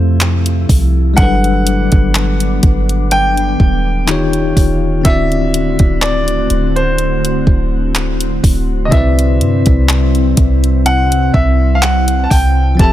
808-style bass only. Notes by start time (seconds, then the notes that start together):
Already playing: F2
0.69 C2
1.18 G1
1.92 G1
2.63 G1
3.60 D#1
4.57 D#1
5.05 D1
5.80 D1
6.50 D1
7.25 C1
7.47 D1
8.44 D1
8.92 C2
9.40 G2
9.67 C2
10.37 C2
11.34 C2
12.31 C2
12.79 F1